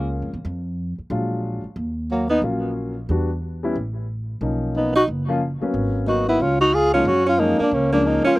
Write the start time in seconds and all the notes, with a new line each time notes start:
Already playing: C#2 G#3 A#3 C#4 F4
0.22 F2
0.34 E2
0.45 F2
0.98 muted upright bass stroke
1.10 A#1 F#3 G#3 D4 F4
1.64 muted upright bass stroke
1.76 D#2
2.11 F#3 A#3
2.30 B3 D#4
2.42 A#1 F#3 A#3 C#4 F4
3.09 E2 G3 B3 D4 F#4
3.63 G3 B3 C#4 E4
3.75 A1
4.41 B1 F3 A#3 C#4 D#4
4.76 B3 D#4
4.96 D#4 F#4
5.08 F#1
5.28 F3 A#3 C#4 F4
5.61 F#3 A#3 B3 C#4, muted upright bass stroke
5.74 G#1
6.06 F#3 A#3 B3 D#4 F#4
6.28 B3 E4
6.40 C#2 C#4 F4
6.61 D#4 F#4
6.73 F4 G#4
6.93 F3 G#3 A#3 C#4 D#4 F4
7.05 F#2 C#4 F#4
7.26 C#4 F4
7.39 F3 G#3 A#3 C#4 D#4
7.59 A#3 D4, muted upright bass stroke
7.71 C#2 A#3 C#4
7.92 F3 G#3 A#3 C#4 D4
8.04 A#3 D#4
8.24 C#4 F4, muted upright bass stroke